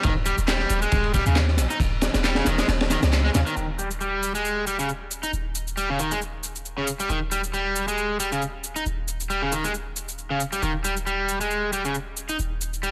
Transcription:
0.03 0.33 D#1 loud
0.03 0.12 D#3 loud
0.03 kick loud
0.03 ride medium
0.03 shaker soft
0.26 0.34 G3 medium
0.26 ride medium
0.26 shaker medium
0.38 0.65 D#1 medium
0.38 shaker soft
0.48 0.81 G3 medium
0.48 snare loud
0.48 clap loud
0.48 ride medium
0.48 shaker soft
0.59 snare soft
0.69 0.86 D#1 medium
0.69 ride medium
0.69 shaker medium
0.82 1.13 G#3 medium
0.82 shaker soft
0.92 1.21 D#1 loud
0.92 kick loud
0.92 ride medium
0.92 shaker soft
1.04 ride soft
1.14 1.23 G3 medium
1.14 kick medium
1.14 ride medium
1.14 shaker medium
1.26 1.59 D#2 loud
1.26 1.36 C#3 medium
1.26 shaker soft
1.35 snare loud
1.35 clap loud
1.35 ride medium
1.35 shaker soft
1.48 snare soft
1.57 1.67 A#1 loud
1.57 snare medium
1.57 ride medium
1.57 shaker medium
1.70 1.77 D#4 medium
1.70 shaker soft
1.80 2.09 D#1 loud
1.80 kick loud
1.80 ride medium
1.80 shaker soft
2.01 snare loud
2.01 ride medium
2.01 shaker medium
2.14 2.42 D#1 medium
2.14 snare loud
2.14 ride medium
2.14 shaker soft
2.24 2.35 G3 medium
2.24 snare loud
2.24 clap loud
2.24 ride medium
2.24 shaker soft
2.35 2.46 C#3 loud
2.35 snare loud
2.35 ride medium
2.45 2.63 D#1 medium
2.45 2.58 D#3 medium
2.45 snare loud
2.45 ride medium
2.45 shaker medium
2.58 2.66 G#3 medium
2.58 snare loud
2.58 ride medium
2.58 shaker soft
2.68 2.97 D#1 loud
2.68 snare loud
2.68 ride medium
2.68 shaker soft
2.81 snare loud
2.81 ride medium
2.90 2.99 D#3 medium
2.90 snare loud
2.90 ride medium
2.90 shaker medium
3.03 3.30 C#2 medium
3.03 snare loud
3.03 ride medium
3.03 shaker soft
3.13 snare loud
3.13 clap loud
3.13 ride medium
3.13 shaker soft
3.25 3.29 G#3 medium
3.25 snare soft
3.34 3.43 D#2 medium
3.34 3.40 C#3 medium
3.34 snare loud
3.34 ride medium
3.34 shaker medium
3.47 3.56 D#3 loud
3.47 shaker soft
3.57 5.31 D#1 medium
3.57 3.65 D#3 medium
3.57 shaker soft
3.79 3.87 G3 medium
3.79 shaker medium
3.91 shaker soft
4.01 4.34 G3 medium
4.01 shaker soft
4.23 shaker medium
4.35 4.66 G#3 medium
4.35 shaker soft
4.45 shaker soft
4.67 4.76 G3 medium
4.67 shaker medium
4.79 4.89 C#3 medium
4.79 shaker soft
4.89 shaker soft
5.11 shaker medium
5.23 5.30 D#4 medium
5.23 shaker soft
5.33 7.08 D#1 medium
5.33 shaker soft
5.55 shaker medium
5.67 shaker soft
5.77 5.88 G3 medium
5.77 shaker soft
5.90 5.99 C#3 medium
5.99 6.11 D#3 medium
5.99 shaker medium
6.11 6.18 G#3 medium
6.11 shaker soft
6.21 shaker soft
6.43 shaker medium
6.55 shaker soft
6.65 shaker soft
6.78 6.87 C#3 medium
6.87 shaker medium
7.00 7.09 G3 medium
7.00 shaker soft
7.09 8.84 D#1 medium
7.09 7.18 D#3 medium
7.09 shaker soft
7.32 7.40 G3 medium
7.32 shaker medium
7.44 shaker soft
7.54 7.87 G3 medium
7.54 shaker soft
7.76 shaker medium
7.88 8.19 G#3 medium
7.88 shaker soft
7.98 shaker soft
8.20 8.28 G3 medium
8.20 shaker medium
8.32 8.41 C#3 medium
8.32 shaker soft
8.42 shaker soft
8.64 shaker medium
8.76 8.83 D#4 medium
8.76 shaker soft
8.86 10.61 D#1 medium
8.86 shaker soft
9.08 shaker medium
9.20 shaker soft
9.30 9.41 G3 medium
9.30 shaker soft
9.42 9.52 C#3 medium
9.52 9.64 D#3 medium
9.52 shaker medium
9.64 9.71 G#3 medium
9.64 shaker soft
9.74 shaker soft
9.96 shaker medium
10.08 shaker soft
10.18 shaker soft
10.30 10.40 C#3 medium
10.40 shaker medium
10.52 10.62 G3 medium
10.52 shaker soft
10.62 12.37 D#1 medium
10.62 10.71 D#3 medium
10.62 shaker soft
10.84 10.93 G3 medium
10.84 shaker medium
10.97 shaker soft
11.07 11.40 G3 medium
11.07 shaker soft
11.29 shaker medium
11.41 11.72 G#3 medium
11.41 shaker soft
11.51 shaker soft
11.73 11.82 G3 medium
11.73 shaker medium
11.85 11.94 C#3 medium
11.85 shaker soft
11.95 shaker soft
12.17 shaker medium
12.29 12.36 D#4 medium
12.29 shaker soft
12.39 12.91 D#1 medium
12.39 shaker soft
12.61 shaker medium
12.73 shaker soft
12.83 12.91 G3 medium
12.83 shaker soft

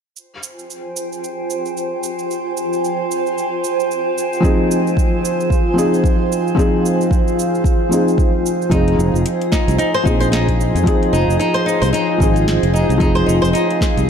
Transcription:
0.15 8.68 F4 medium
0.15 8.73 C5 medium
0.15 8.68 C5 medium
0.15 4.39 G5 medium
0.15 8.68 G#5 medium
0.15 shaker soft
0.43 shaker medium
0.59 shaker soft
0.70 shaker soft
0.96 shaker medium
1.13 shaker soft
1.24 shaker soft
1.50 shaker medium
1.66 shaker soft
1.77 shaker soft
2.03 shaker medium
2.19 shaker soft
2.31 shaker soft
2.57 shaker medium
2.73 shaker soft
2.84 shaker soft
3.11 shaker medium
3.26 shaker soft
3.38 shaker soft
3.64 shaker medium
3.80 shaker soft
3.91 shaker soft
4.18 shaker medium
4.33 shaker soft
4.40 5.72 F3 medium
4.40 5.74 C4 medium
4.40 5.74 D#4 medium
4.40 8.68 F5 medium
4.40 kick loud
4.44 5.75 G#4 medium
4.44 shaker soft
4.71 shaker medium
4.87 shaker soft
4.97 kick loud
4.97 shaker soft
5.25 shaker medium
5.40 shaker soft
5.50 kick loud
5.50 shaker soft
5.74 6.53 F3 medium
5.74 6.54 C4 medium
5.74 6.55 D#4 medium
5.78 6.55 G#4 medium
5.78 shaker medium
5.94 shaker soft
6.04 kick loud
6.04 shaker soft
6.32 shaker medium
6.48 shaker soft
6.55 7.87 F3 medium
6.55 7.88 C4 medium
6.55 7.89 D#4 medium
6.55 kick loud
6.59 7.89 G#4 loud
6.59 shaker soft
6.86 shaker medium
7.01 shaker soft
7.11 kick loud
7.11 shaker soft
7.28 shaker soft
7.39 shaker medium
7.55 shaker soft
7.64 kick loud
7.64 shaker soft
7.89 8.68 F3 medium
7.89 8.69 C4 medium
7.89 8.69 D#4 medium
7.89 shaker medium
7.93 8.70 G#4 medium
8.08 shaker soft
8.18 kick loud
8.18 shaker soft
8.46 shaker medium
8.62 shaker soft
8.69 8.94 F1 medium
8.69 10.02 F3 medium
8.69 10.03 C4 medium
8.69 9.24 D#4 medium
8.69 10.03 D#4 medium
8.69 14.10 F4 medium
8.69 14.10 G#4 medium
8.69 10.04 G#4 medium
8.69 14.10 C5 medium
8.69 14.10 D#5 medium
8.69 14.10 F5 medium
8.69 kick loud
8.69 closed hi-hat medium
8.69 shaker soft
8.88 closed hi-hat soft
8.99 9.11 F1 medium
8.99 shaker medium
9.14 9.23 F1 medium
9.14 shaker soft
9.26 closed hi-hat medium
9.26 shaker soft
9.41 closed hi-hat soft
9.52 9.77 D#4 medium
9.52 kick loud
9.52 snare medium
9.52 shaker medium
9.68 9.77 C2 medium
9.68 closed hi-hat soft
9.68 shaker soft
9.78 9.92 D#4 medium
9.78 closed hi-hat medium
9.78 shaker soft
9.94 10.05 C5 medium
10.03 10.70 A#1 medium
10.03 10.82 F3 medium
10.03 10.83 C4 medium
10.03 10.20 D#4 medium
10.03 10.84 D#4 medium
10.03 10.84 G#4 medium
10.03 kick medium
10.03 shaker medium
10.20 10.27 C5 medium
10.20 closed hi-hat soft
10.20 shaker soft
10.32 10.85 D#4 medium
10.32 snare medium
10.32 closed hi-hat medium
10.32 shaker soft
10.48 kick medium
10.48 closed hi-hat soft
10.61 shaker medium
10.75 10.84 F2 medium
10.75 closed hi-hat soft
10.75 shaker soft
10.83 12.16 F3 medium
10.83 12.17 C4 medium
10.83 12.17 D#4 medium
10.83 kick loud
10.83 closed hi-hat medium
10.88 12.18 G#4 loud
10.88 shaker soft
11.03 closed hi-hat soft
11.13 11.25 F1 medium
11.13 11.38 D#4 medium
11.13 shaker medium
11.28 11.37 F1 medium
11.28 shaker soft
11.39 11.53 D#4 medium
11.39 closed hi-hat medium
11.39 shaker soft
11.54 11.65 C5 medium
11.54 closed hi-hat soft
11.66 11.81 D#4 medium
11.66 shaker medium
11.82 11.91 C2 medium
11.82 11.88 C5 medium
11.82 closed hi-hat soft
11.82 shaker soft
11.93 12.45 D#4 medium
11.93 closed hi-hat medium
11.93 shaker soft
12.18 12.57 G#1 medium
12.18 12.96 F3 medium
12.18 12.98 C4 medium
12.18 12.98 D#4 medium
12.18 kick loud
12.18 shaker medium
12.22 12.99 G#4 medium
12.36 closed hi-hat soft
12.36 shaker soft
12.48 snare medium
12.48 closed hi-hat medium
12.48 shaker soft
12.63 12.83 F1 medium
12.63 closed hi-hat soft
12.73 12.99 D#4 medium
12.73 shaker medium
12.89 12.98 C2 medium
12.89 closed hi-hat soft
12.89 shaker soft
12.98 13.23 F1 loud
12.98 14.10 F3 medium
12.98 14.10 C4 medium
12.98 13.14 D#4 medium
12.98 14.10 D#4 medium
12.98 kick loud
12.98 closed hi-hat medium
13.02 14.10 G#4 loud
13.02 shaker soft
13.15 13.26 C5 medium
13.15 closed hi-hat soft
13.26 13.40 F1 medium
13.26 13.41 D#4 medium
13.26 shaker medium
13.42 13.52 F1 medium
13.42 13.49 C5 loud
13.42 shaker soft
13.53 14.06 D#4 medium
13.53 closed hi-hat medium
13.53 shaker soft
13.71 closed hi-hat soft
13.81 kick loud
13.81 snare medium
13.81 shaker medium
13.97 14.06 C2 medium
13.97 closed hi-hat soft
13.97 shaker soft

